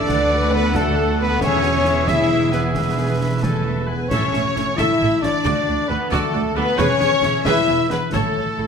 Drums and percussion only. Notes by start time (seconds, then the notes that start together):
0.09 concert bass drum, snare
0.75 concert bass drum, snare
1.41 concert bass drum, snare
1.63 snare
1.85 snare
2.08 concert bass drum, snare
2.52 snare
2.75 concert bass drum, snare
3.43 concert bass drum, snare
4.11 concert bass drum, snare, crash
4.34 snare
4.56 snare
4.78 concert bass drum, snare
5.23 snare
5.45 concert bass drum, snare
6.12 concert bass drum, snare
6.79 concert bass drum, snare, crash
7.00 snare
7.23 snare
7.45 concert bass drum, snare
7.90 snare
8.13 concert bass drum, snare